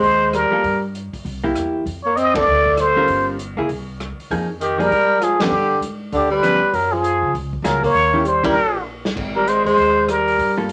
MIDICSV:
0, 0, Header, 1, 7, 480
1, 0, Start_track
1, 0, Key_signature, -4, "minor"
1, 0, Tempo, 304414
1, 1008, Time_signature, 4, 2, 24, 8
1, 16910, End_track
2, 0, Start_track
2, 0, Title_t, "Muted trumpet"
2, 0, Program_c, 0, 59
2, 0, Note_on_c, 0, 72, 87
2, 555, Note_on_c, 0, 70, 81
2, 579, Note_off_c, 0, 72, 0
2, 1319, Note_off_c, 0, 70, 0
2, 3207, Note_on_c, 0, 73, 77
2, 3412, Note_on_c, 0, 75, 88
2, 3436, Note_off_c, 0, 73, 0
2, 3741, Note_on_c, 0, 74, 86
2, 3765, Note_off_c, 0, 75, 0
2, 4420, Note_on_c, 0, 72, 84
2, 4444, Note_off_c, 0, 74, 0
2, 5172, Note_off_c, 0, 72, 0
2, 7263, Note_on_c, 0, 67, 71
2, 7587, Note_on_c, 0, 70, 98
2, 7611, Note_off_c, 0, 67, 0
2, 8254, Note_on_c, 0, 68, 80
2, 8278, Note_off_c, 0, 70, 0
2, 8535, Note_on_c, 0, 67, 71
2, 8559, Note_off_c, 0, 68, 0
2, 9183, Note_off_c, 0, 67, 0
2, 9709, Note_on_c, 0, 67, 65
2, 9957, Note_off_c, 0, 67, 0
2, 9972, Note_on_c, 0, 71, 90
2, 10642, Note_on_c, 0, 70, 73
2, 10666, Note_off_c, 0, 71, 0
2, 10904, Note_on_c, 0, 68, 82
2, 10928, Note_off_c, 0, 70, 0
2, 11567, Note_off_c, 0, 68, 0
2, 12066, Note_on_c, 0, 70, 74
2, 12334, Note_off_c, 0, 70, 0
2, 12381, Note_on_c, 0, 73, 96
2, 13044, Note_on_c, 0, 72, 74
2, 13068, Note_off_c, 0, 73, 0
2, 13318, Note_off_c, 0, 72, 0
2, 13328, Note_on_c, 0, 70, 78
2, 13933, Note_off_c, 0, 70, 0
2, 14751, Note_on_c, 0, 70, 82
2, 14955, Note_on_c, 0, 72, 74
2, 14979, Note_off_c, 0, 70, 0
2, 15215, Note_off_c, 0, 72, 0
2, 15224, Note_on_c, 0, 72, 84
2, 15929, Note_on_c, 0, 70, 88
2, 15952, Note_off_c, 0, 72, 0
2, 16685, Note_off_c, 0, 70, 0
2, 16910, End_track
3, 0, Start_track
3, 0, Title_t, "Hollow-body jazz guitar"
3, 0, Program_c, 1, 26
3, 808, Note_on_c, 1, 55, 53
3, 828, Note_on_c, 1, 58, 50
3, 830, Note_on_c, 1, 65, 52
3, 831, Note_on_c, 1, 69, 55
3, 981, Note_off_c, 1, 55, 0
3, 991, Note_off_c, 1, 58, 0
3, 992, Note_off_c, 1, 65, 0
3, 992, Note_off_c, 1, 69, 0
3, 2264, Note_on_c, 1, 58, 54
3, 2273, Note_on_c, 1, 64, 58
3, 2277, Note_on_c, 1, 67, 57
3, 2890, Note_off_c, 1, 58, 0
3, 2895, Note_off_c, 1, 64, 0
3, 2897, Note_off_c, 1, 67, 0
3, 3692, Note_on_c, 1, 50, 61
3, 3703, Note_on_c, 1, 60, 62
3, 3704, Note_on_c, 1, 66, 57
3, 3715, Note_on_c, 1, 69, 73
3, 3863, Note_off_c, 1, 50, 0
3, 3868, Note_off_c, 1, 60, 0
3, 3869, Note_off_c, 1, 66, 0
3, 3874, Note_off_c, 1, 69, 0
3, 4665, Note_on_c, 1, 55, 54
3, 4681, Note_on_c, 1, 61, 60
3, 4687, Note_on_c, 1, 65, 65
3, 4695, Note_on_c, 1, 70, 68
3, 5291, Note_off_c, 1, 55, 0
3, 5299, Note_off_c, 1, 61, 0
3, 5302, Note_off_c, 1, 65, 0
3, 5306, Note_off_c, 1, 70, 0
3, 5630, Note_on_c, 1, 58, 54
3, 5648, Note_on_c, 1, 64, 65
3, 5655, Note_on_c, 1, 68, 68
3, 5792, Note_off_c, 1, 58, 0
3, 5801, Note_off_c, 1, 64, 0
3, 5804, Note_off_c, 1, 68, 0
3, 6796, Note_on_c, 1, 53, 47
3, 6803, Note_on_c, 1, 68, 50
3, 6804, Note_on_c, 1, 58, 45
3, 6809, Note_on_c, 1, 63, 52
3, 7050, Note_off_c, 1, 53, 0
3, 7053, Note_off_c, 1, 68, 0
3, 7054, Note_off_c, 1, 58, 0
3, 7056, Note_off_c, 1, 63, 0
3, 7541, Note_on_c, 1, 53, 60
3, 7554, Note_on_c, 1, 58, 54
3, 7557, Note_on_c, 1, 63, 61
3, 7564, Note_on_c, 1, 68, 60
3, 7708, Note_off_c, 1, 53, 0
3, 7714, Note_off_c, 1, 58, 0
3, 7715, Note_off_c, 1, 63, 0
3, 7719, Note_off_c, 1, 68, 0
3, 8535, Note_on_c, 1, 53, 56
3, 8537, Note_on_c, 1, 59, 61
3, 8542, Note_on_c, 1, 61, 68
3, 8684, Note_off_c, 1, 53, 0
3, 8685, Note_off_c, 1, 59, 0
3, 8688, Note_off_c, 1, 61, 0
3, 10135, Note_on_c, 1, 53, 52
3, 10146, Note_on_c, 1, 59, 54
3, 10149, Note_on_c, 1, 61, 60
3, 10399, Note_off_c, 1, 53, 0
3, 10405, Note_off_c, 1, 59, 0
3, 10406, Note_off_c, 1, 61, 0
3, 12051, Note_on_c, 1, 54, 51
3, 12054, Note_on_c, 1, 65, 56
3, 12056, Note_on_c, 1, 58, 49
3, 12066, Note_on_c, 1, 68, 62
3, 12317, Note_off_c, 1, 54, 0
3, 12318, Note_off_c, 1, 65, 0
3, 12319, Note_off_c, 1, 58, 0
3, 12325, Note_off_c, 1, 68, 0
3, 12823, Note_on_c, 1, 51, 56
3, 12827, Note_on_c, 1, 61, 56
3, 12835, Note_on_c, 1, 64, 61
3, 12849, Note_on_c, 1, 67, 61
3, 12988, Note_off_c, 1, 51, 0
3, 12990, Note_off_c, 1, 61, 0
3, 12994, Note_off_c, 1, 64, 0
3, 13001, Note_off_c, 1, 67, 0
3, 13297, Note_on_c, 1, 51, 50
3, 13302, Note_on_c, 1, 61, 56
3, 13312, Note_on_c, 1, 64, 60
3, 13313, Note_on_c, 1, 67, 57
3, 13465, Note_off_c, 1, 51, 0
3, 13467, Note_off_c, 1, 61, 0
3, 13472, Note_off_c, 1, 64, 0
3, 13473, Note_off_c, 1, 67, 0
3, 16673, Note_on_c, 1, 55, 52
3, 16675, Note_on_c, 1, 65, 61
3, 16678, Note_on_c, 1, 58, 58
3, 16688, Note_on_c, 1, 69, 62
3, 16833, Note_off_c, 1, 55, 0
3, 16834, Note_off_c, 1, 65, 0
3, 16835, Note_off_c, 1, 58, 0
3, 16840, Note_off_c, 1, 69, 0
3, 16910, End_track
4, 0, Start_track
4, 0, Title_t, "Tenor saxophone"
4, 0, Program_c, 2, 66
4, 0, Note_on_c, 2, 56, 71
4, 538, Note_on_c, 2, 55, 67
4, 562, Note_off_c, 2, 56, 0
4, 1310, Note_off_c, 2, 55, 0
4, 3245, Note_on_c, 2, 58, 66
4, 3423, Note_on_c, 2, 60, 83
4, 3446, Note_off_c, 2, 58, 0
4, 3726, Note_on_c, 2, 57, 70
4, 3750, Note_off_c, 2, 60, 0
4, 4395, Note_off_c, 2, 57, 0
4, 4395, Note_on_c, 2, 57, 65
4, 4861, Note_off_c, 2, 57, 0
4, 7262, Note_on_c, 2, 51, 64
4, 7560, Note_on_c, 2, 55, 79
4, 7583, Note_off_c, 2, 51, 0
4, 8203, Note_on_c, 2, 53, 63
4, 8227, Note_off_c, 2, 55, 0
4, 8522, Note_on_c, 2, 50, 59
4, 8546, Note_off_c, 2, 53, 0
4, 9176, Note_off_c, 2, 50, 0
4, 9663, Note_on_c, 2, 50, 60
4, 9929, Note_off_c, 2, 50, 0
4, 9938, Note_on_c, 2, 55, 83
4, 10609, Note_on_c, 2, 54, 66
4, 10632, Note_off_c, 2, 55, 0
4, 10915, Note_on_c, 2, 53, 61
4, 10938, Note_off_c, 2, 54, 0
4, 11572, Note_off_c, 2, 53, 0
4, 12056, Note_on_c, 2, 54, 58
4, 12329, Note_off_c, 2, 54, 0
4, 12350, Note_on_c, 2, 58, 77
4, 13002, Note_on_c, 2, 55, 63
4, 13026, Note_off_c, 2, 58, 0
4, 13298, Note_off_c, 2, 55, 0
4, 13308, Note_on_c, 2, 55, 60
4, 13922, Note_off_c, 2, 55, 0
4, 14754, Note_on_c, 2, 55, 68
4, 14944, Note_on_c, 2, 56, 70
4, 14968, Note_off_c, 2, 55, 0
4, 15219, Note_off_c, 2, 56, 0
4, 15229, Note_on_c, 2, 56, 72
4, 15905, Note_on_c, 2, 55, 63
4, 15928, Note_off_c, 2, 56, 0
4, 16673, Note_off_c, 2, 55, 0
4, 16910, End_track
5, 0, Start_track
5, 0, Title_t, "Upright bass"
5, 0, Program_c, 3, 32
5, 40, Note_on_c, 3, 39, 77
5, 767, Note_off_c, 3, 39, 0
5, 1000, Note_on_c, 3, 43, 72
5, 1726, Note_off_c, 3, 43, 0
5, 1965, Note_on_c, 3, 36, 74
5, 2412, Note_off_c, 3, 36, 0
5, 2454, Note_on_c, 3, 40, 68
5, 2898, Note_off_c, 3, 40, 0
5, 2924, Note_on_c, 3, 41, 67
5, 3837, Note_off_c, 3, 41, 0
5, 3897, Note_on_c, 3, 38, 77
5, 4805, Note_off_c, 3, 38, 0
5, 4846, Note_on_c, 3, 31, 73
5, 5570, Note_off_c, 3, 31, 0
5, 5616, Note_on_c, 3, 37, 59
5, 5790, Note_off_c, 3, 37, 0
5, 5820, Note_on_c, 3, 36, 69
5, 6538, Note_off_c, 3, 36, 0
5, 6787, Note_on_c, 3, 41, 72
5, 7690, Note_off_c, 3, 41, 0
5, 7736, Note_on_c, 3, 44, 70
5, 8644, Note_off_c, 3, 44, 0
5, 8678, Note_on_c, 3, 43, 69
5, 9129, Note_off_c, 3, 43, 0
5, 9145, Note_on_c, 3, 44, 65
5, 9602, Note_off_c, 3, 44, 0
5, 9651, Note_on_c, 3, 38, 72
5, 10373, Note_off_c, 3, 38, 0
5, 10617, Note_on_c, 3, 42, 72
5, 11336, Note_off_c, 3, 42, 0
5, 11381, Note_on_c, 3, 49, 66
5, 11552, Note_off_c, 3, 49, 0
5, 11579, Note_on_c, 3, 37, 71
5, 12008, Note_off_c, 3, 37, 0
5, 12018, Note_on_c, 3, 37, 76
5, 12478, Note_off_c, 3, 37, 0
5, 12525, Note_on_c, 3, 39, 70
5, 13437, Note_off_c, 3, 39, 0
5, 13466, Note_on_c, 3, 34, 71
5, 14388, Note_off_c, 3, 34, 0
5, 14438, Note_on_c, 3, 32, 71
5, 15165, Note_off_c, 3, 32, 0
5, 15206, Note_on_c, 3, 39, 61
5, 15384, Note_off_c, 3, 39, 0
5, 15411, Note_on_c, 3, 39, 70
5, 16321, Note_off_c, 3, 39, 0
5, 16373, Note_on_c, 3, 43, 73
5, 16910, Note_off_c, 3, 43, 0
5, 16910, End_track
6, 0, Start_track
6, 0, Title_t, "Muted upright bass strokes"
6, 1775, Note_on_c, 9, 29, 34
6, 1933, Note_off_c, 9, 29, 0
6, 6588, Note_on_c, 9, 29, 34
6, 6746, Note_off_c, 9, 29, 0
6, 10423, Note_on_c, 9, 29, 34
6, 10580, Note_off_c, 9, 29, 0
6, 16910, End_track
7, 0, Start_track
7, 0, Title_t, "Drums"
7, 45, Note_on_c, 9, 36, 28
7, 54, Note_on_c, 9, 46, 36
7, 203, Note_off_c, 9, 36, 0
7, 212, Note_off_c, 9, 46, 0
7, 526, Note_on_c, 9, 37, 57
7, 529, Note_on_c, 9, 42, 45
7, 684, Note_off_c, 9, 37, 0
7, 687, Note_off_c, 9, 42, 0
7, 1005, Note_on_c, 9, 36, 29
7, 1011, Note_on_c, 9, 46, 40
7, 1163, Note_off_c, 9, 36, 0
7, 1169, Note_off_c, 9, 46, 0
7, 1497, Note_on_c, 9, 42, 45
7, 1655, Note_off_c, 9, 42, 0
7, 1787, Note_on_c, 9, 36, 38
7, 1791, Note_on_c, 9, 46, 34
7, 1945, Note_off_c, 9, 36, 0
7, 1949, Note_off_c, 9, 46, 0
7, 1973, Note_on_c, 9, 36, 27
7, 1981, Note_on_c, 9, 46, 37
7, 2131, Note_off_c, 9, 36, 0
7, 2139, Note_off_c, 9, 46, 0
7, 2274, Note_on_c, 9, 36, 49
7, 2432, Note_off_c, 9, 36, 0
7, 2451, Note_on_c, 9, 37, 54
7, 2454, Note_on_c, 9, 42, 46
7, 2609, Note_off_c, 9, 37, 0
7, 2612, Note_off_c, 9, 42, 0
7, 2932, Note_on_c, 9, 36, 31
7, 2942, Note_on_c, 9, 46, 41
7, 3090, Note_off_c, 9, 36, 0
7, 3099, Note_off_c, 9, 46, 0
7, 3424, Note_on_c, 9, 42, 45
7, 3582, Note_off_c, 9, 42, 0
7, 3711, Note_on_c, 9, 51, 72
7, 3713, Note_on_c, 9, 36, 77
7, 3868, Note_off_c, 9, 51, 0
7, 3871, Note_off_c, 9, 36, 0
7, 4193, Note_on_c, 9, 36, 50
7, 4351, Note_off_c, 9, 36, 0
7, 4372, Note_on_c, 9, 37, 56
7, 4376, Note_on_c, 9, 42, 47
7, 4530, Note_off_c, 9, 37, 0
7, 4533, Note_off_c, 9, 42, 0
7, 4854, Note_on_c, 9, 46, 39
7, 4857, Note_on_c, 9, 36, 32
7, 5011, Note_off_c, 9, 46, 0
7, 5015, Note_off_c, 9, 36, 0
7, 5349, Note_on_c, 9, 42, 47
7, 5507, Note_off_c, 9, 42, 0
7, 5821, Note_on_c, 9, 46, 36
7, 5823, Note_on_c, 9, 36, 29
7, 5979, Note_off_c, 9, 46, 0
7, 5980, Note_off_c, 9, 36, 0
7, 6312, Note_on_c, 9, 37, 51
7, 6316, Note_on_c, 9, 42, 46
7, 6470, Note_off_c, 9, 37, 0
7, 6473, Note_off_c, 9, 42, 0
7, 6621, Note_on_c, 9, 46, 32
7, 6779, Note_off_c, 9, 46, 0
7, 6790, Note_on_c, 9, 36, 31
7, 6797, Note_on_c, 9, 46, 40
7, 6947, Note_off_c, 9, 36, 0
7, 6955, Note_off_c, 9, 46, 0
7, 7273, Note_on_c, 9, 42, 47
7, 7430, Note_off_c, 9, 42, 0
7, 7572, Note_on_c, 9, 46, 38
7, 7730, Note_off_c, 9, 46, 0
7, 7744, Note_on_c, 9, 36, 27
7, 7757, Note_on_c, 9, 46, 39
7, 7902, Note_off_c, 9, 36, 0
7, 7915, Note_off_c, 9, 46, 0
7, 8225, Note_on_c, 9, 37, 52
7, 8228, Note_on_c, 9, 42, 51
7, 8382, Note_off_c, 9, 37, 0
7, 8385, Note_off_c, 9, 42, 0
7, 8514, Note_on_c, 9, 38, 71
7, 8517, Note_on_c, 9, 51, 60
7, 8672, Note_off_c, 9, 38, 0
7, 8675, Note_off_c, 9, 51, 0
7, 9184, Note_on_c, 9, 42, 44
7, 9342, Note_off_c, 9, 42, 0
7, 9658, Note_on_c, 9, 46, 35
7, 9659, Note_on_c, 9, 36, 28
7, 9816, Note_off_c, 9, 36, 0
7, 9816, Note_off_c, 9, 46, 0
7, 10140, Note_on_c, 9, 37, 55
7, 10144, Note_on_c, 9, 42, 46
7, 10298, Note_off_c, 9, 37, 0
7, 10301, Note_off_c, 9, 42, 0
7, 10619, Note_on_c, 9, 36, 30
7, 10621, Note_on_c, 9, 46, 42
7, 10776, Note_off_c, 9, 36, 0
7, 10779, Note_off_c, 9, 46, 0
7, 11104, Note_on_c, 9, 42, 45
7, 11262, Note_off_c, 9, 42, 0
7, 11577, Note_on_c, 9, 36, 27
7, 11590, Note_on_c, 9, 46, 36
7, 11735, Note_off_c, 9, 36, 0
7, 11747, Note_off_c, 9, 46, 0
7, 11874, Note_on_c, 9, 36, 44
7, 12032, Note_off_c, 9, 36, 0
7, 12057, Note_on_c, 9, 37, 54
7, 12057, Note_on_c, 9, 38, 35
7, 12060, Note_on_c, 9, 42, 50
7, 12214, Note_off_c, 9, 37, 0
7, 12214, Note_off_c, 9, 38, 0
7, 12218, Note_off_c, 9, 42, 0
7, 12351, Note_on_c, 9, 36, 51
7, 12366, Note_on_c, 9, 46, 35
7, 12508, Note_off_c, 9, 36, 0
7, 12523, Note_off_c, 9, 46, 0
7, 12528, Note_on_c, 9, 36, 31
7, 12532, Note_on_c, 9, 46, 40
7, 12686, Note_off_c, 9, 36, 0
7, 12690, Note_off_c, 9, 46, 0
7, 13012, Note_on_c, 9, 42, 47
7, 13169, Note_off_c, 9, 42, 0
7, 13305, Note_on_c, 9, 36, 81
7, 13312, Note_on_c, 9, 51, 70
7, 13463, Note_off_c, 9, 36, 0
7, 13469, Note_off_c, 9, 51, 0
7, 14273, Note_on_c, 9, 38, 53
7, 14430, Note_off_c, 9, 38, 0
7, 14453, Note_on_c, 9, 36, 70
7, 14454, Note_on_c, 9, 49, 64
7, 14610, Note_off_c, 9, 36, 0
7, 14612, Note_off_c, 9, 49, 0
7, 14942, Note_on_c, 9, 42, 48
7, 15100, Note_off_c, 9, 42, 0
7, 15239, Note_on_c, 9, 46, 37
7, 15397, Note_off_c, 9, 46, 0
7, 15414, Note_on_c, 9, 36, 30
7, 15414, Note_on_c, 9, 46, 36
7, 15571, Note_off_c, 9, 46, 0
7, 15572, Note_off_c, 9, 36, 0
7, 15901, Note_on_c, 9, 37, 56
7, 15905, Note_on_c, 9, 42, 50
7, 16059, Note_off_c, 9, 37, 0
7, 16062, Note_off_c, 9, 42, 0
7, 16204, Note_on_c, 9, 46, 32
7, 16362, Note_off_c, 9, 46, 0
7, 16380, Note_on_c, 9, 36, 29
7, 16387, Note_on_c, 9, 46, 43
7, 16538, Note_off_c, 9, 36, 0
7, 16544, Note_off_c, 9, 46, 0
7, 16861, Note_on_c, 9, 42, 46
7, 16910, Note_off_c, 9, 42, 0
7, 16910, End_track
0, 0, End_of_file